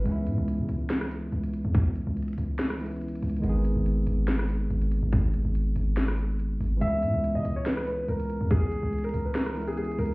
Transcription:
<<
  \new Staff \with { instrumentName = "Grand piano" } { \time 4/4 \key cis \dorian \tempo 4 = 142 r1 | r1 | r1 | r1 |
e''4~ e''16 dis''8 cis''16 b'8 b'8 ais'4 | gis'4~ gis'16 ais'8 b'16 ais'8. gis'16 gis'8 ais'8 | }
  \new Staff \with { instrumentName = "Tine electric piano" } { \time 4/4 \key cis \dorian <e gis b cis' e'>1~ | <e gis b cis' e'>2~ <e gis b cis' e'>8 <e gis b cis' e'>4. | <dis gis b dis' gis'>1~ | <dis gis b dis' gis'>1 |
<e gis b cis' e'>1~ | <e gis b cis' e'>2~ <e gis b cis' e'>8 <e gis b cis' e'>4. | }
  \new Staff \with { instrumentName = "808-style bass" } { \clef bass \time 4/4 \key cis \dorian cis,8 gis,16 cis,8 cis16 cis,4. cis,8. e,16~ | e,16 r8 cis,8. cis,2 cis,8 | gis,,8. gis,,8. gis,,4. gis,,8. gis,,16~ | gis,,8. gis,,8. gis,,2 gis,,8 |
cis,8 gis,16 cis,8 cis16 cis,4. cis,8. e,16~ | e,16 r8 cis,8. cis,2 cis,8 | }
  \new DrumStaff \with { instrumentName = "Drums" } \drummode { \time 4/4 hh8 hh8 hh8 hh8 <hh ss sn>16 ss16 hh8 hh16 hh16 hh8 | <hh bd>8 hh8 hh32 hh32 hh32 hh32 hh8 <hh ss sn>16 ss16 hh32 hh32 hh32 hh32 \tuplet 3/2 { hh16 hh16 hh16 <hh hho>16 hh16 hh16 } | hh8 hh8 hh8 hh8 <hh ss sn>16 ss16 hh8 hh16 hh16 hh8 | <hh bd>8 hh8 hh8 hh8 <hh sn>16 ss16 hh8 hh8 hho8 |
hh8 hh8 hh8 hh8 <hh ss sn>16 ss16 hh8 hh16 hh16 hh8 | <hh bd>8 hh8 hh32 hh32 hh32 hh32 hh8 <hh ss sn>16 ss16 hh32 hh32 hh32 hh32 \tuplet 3/2 { hh16 hh16 hh16 <hh hho>16 hh16 r16 } | }
>>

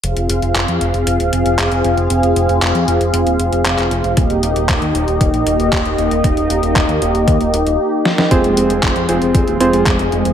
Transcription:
<<
  \new Staff \with { instrumentName = "Electric grand piano" } { \time 4/4 \key f \minor \tempo 4 = 116 r1 | r1 | r1 | r1 |
<c' f' aes' c''>4. <c' f' aes' c''>4 <c' f' aes' c''>8 r4 | }
  \new Staff \with { instrumentName = "Analog synth pad" } { \time 4/4 \key f \minor <c' f' aes' f''>1~ | <c' f' aes' f''>1 | <bes ees' g' ees''>1~ | <bes ees' g' ees''>1 |
<f aes c' aes'>1 | }
  \new Staff \with { instrumentName = "Analog synth bass" } { \clef bass \time 4/4 \key f \minor f,,16 f,,16 f,,16 f,,16 f,,16 f,16 f,,16 f,,16 f,,16 ees,,16 f,,16 f,,16 f,,16 f,,16 f,,16 f,,16 | f,,16 f,,16 f,,16 f,,16 f,,16 f,16 f,,16 f,,16 f,,16 ees,,16 f,,16 f,,16 f,,16 f,,16 f,,16 f,,16 | ees,,16 ees,,16 ees,,16 ees,,16 ees,,16 ees,16 ees,,16 ees,,16 ees,,16 bes,,16 ees,,16 ees,,16 ees,,16 ees,,16 ees,,16 ees,,16 | ees,,16 ees,,16 ees,,16 ees,,16 ees,,16 ees,16 ees,,16 ees,,16 ees,16 ees,,16 ees,,16 ees,,16 r4 |
f,,16 f,,16 f,,16 f,,16 f,,16 f,16 f,,16 f,,16 f,,16 ees,,16 f,,16 f,,16 f,,16 f,,16 f,,16 f,,16 | }
  \new DrumStaff \with { instrumentName = "Drums" } \drummode { \time 4/4 hh16 hh16 hh16 hh16 <hc hh>16 hh16 hh16 hh16 hh16 hh16 hh16 hh16 <hc hh>16 hh16 hh16 hh16 | hh16 hh16 hh16 hh16 <hc hh>16 hh16 hh16 hh16 hh16 hh16 hh16 hh16 <hc hh>16 <hc hh>16 hh16 hh16 | <hh bd>16 hh16 hh16 hh16 <hc hh bd>16 hh16 hh16 hh16 <hh bd>16 hh16 hh16 hh16 <hc hh bd>16 hh16 hh16 hh16 | <hh bd>16 hh16 hh16 hh16 <hc hh bd>16 hh16 hh16 hh16 <hh bd>16 hh16 hh16 hh16 r8 sn16 sn16 |
<hh bd>16 hh16 hh16 hh16 <hc hh bd>16 hh16 hh16 hh16 <hh bd>16 hh16 hh16 hh16 <hc hh bd>16 hh16 hh16 hh16 | }
>>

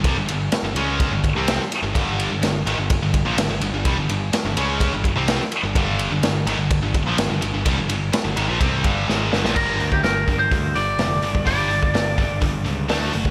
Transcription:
<<
  \new Staff \with { instrumentName = "Lead electric guitar" } { \time 4/4 \key g \minor \tempo 4 = 126 r1 | r1 | r1 | r1 |
r1 | bes'8. g'16 bes'8. c''8. d''4. | d''2 r2 | }
  \new Staff \with { instrumentName = "Distorted electric guitar" } { \clef bass \time 4/4 \key g \minor <c g>16 <g, d>16 <g, d>8 r16 <g, d>16 <cis aes cis'>8. <g, d>8 <c g c'>8 r8 <g, d>16 | <g, d g>8. <g, d>16 <g, d>8 <aes, ees>16 <g, d>8 <g, d>8 <bes, f>16 <g, d>16 <g, d>16 <g, d>16 <g, d>16 | <c g>16 <g, d>16 <g, d>8 r16 <g, d>16 <cis aes cis'>8. <g, d>8 <c g c'>8 r8 <g, d>16 | <g, d g>8. <g, d>16 <g, d>8 <aes, ees>16 <g, d>8 <g, d>8 <bes, f>16 <g, d>16 <g, d>16 <g, d>16 <g, d>16 |
<c g>16 <g, d>16 <g, d>8 r16 <g, d>16 <aes, ees>16 <bes, f>16 <c g c'>8 <g, d g>8 <aes, ees aes>8 <g, d>16 <bes, f>16 | <g, d g>8 <g, d>8 <g, d>8 <g, d>8 <g, d>8 <g, d>8 <g, d>8 <g, d>8 | <g, d g>8 <g, d>8 <g, d>8 <g, d>8 <g, d>8 <g, d>8 <d a d'>8 <d a>8 | }
  \new Staff \with { instrumentName = "Picked electric bass" } { \clef bass \time 4/4 \key g \minor c,16 g,,16 g,,8 r16 g,,16 cis,8. g,,8 c,8 r8 g,,16 | g,,8. g,,16 g,,8 aes,,16 g,,8 g,,8 bes,,16 g,,16 g,,16 g,,16 g,,16 | c,16 g,,16 g,,8 r16 g,,16 cis,8. g,,8 c,8 r8 g,,16 | g,,8. g,,16 g,,8 aes,,16 g,,8 g,,8 bes,,16 g,,16 g,,16 g,,16 g,,16 |
c,16 g,,16 g,,8 r16 g,,16 aes,,16 bes,,16 c,8 g,,8 aes,,8 g,,16 bes,,16 | g,,8 d,8 g,,8 g,,8 d,8 g,,8 f,,8 g,,8 | g,,4 g,,8 g,,8 g,,8 cis,8 d,8 fis,,8 | }
  \new DrumStaff \with { instrumentName = "Drums" } \drummode { \time 4/4 <bd cymr>8 cymr8 <cymr sn>8 cymr8 <bd cymr>8 <bd cymr>8 <cymr sn>16 sn16 <cymr sn>8 | <bd cymr>8 cymr8 <cymr sn>8 cymr8 <bd cymr>8 <bd cymr>8 <cymr sn>16 sn16 cymr8 | <bd cymr>8 cymr8 <cymr sn>8 cymr8 <bd cymr>8 <bd cymr>8 <cymr sn>16 sn16 cymr8 | <bd cymr>8 cymr8 <cymr sn>8 cymr8 <bd cymr>8 <bd cymr>8 <cymr sn>8 cymr8 |
<bd cymr>8 cymr8 <cymr sn>8 cymr8 <bd cymr>8 <bd cymr>8 sn8 sn16 sn16 | <cymc bd>8 hho16 bd16 <hho sn>8 <hho bd>8 <hho bd>8 hho8 <hho sn>8 hho16 bd16 | <hho bd>8 hho16 bd16 <hho sn>8 <hho bd>8 <hho bd>8 hho8 <hho sn>8 hho16 bd16 | }
>>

